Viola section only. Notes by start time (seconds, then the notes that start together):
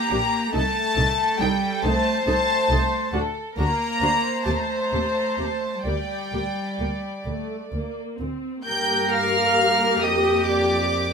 0.10 D4 G4
0.53 D#4 A4
0.97 D#4 A4
1.41 D#4 A4
1.84 D#4 A4
2.27 D#4 A4
2.70 D#4 A4
3.14 D4 F#4
3.59 D4 F#4
4.02 D4 F#4
4.46 C4 G4
4.93 C4 G4
5.38 C4 G4
5.86 A#3 G4
6.33 A#3 G4
6.80 A#3 G4
7.27 A3
7.73 A#3
8.21 C4
8.67 A#3 G4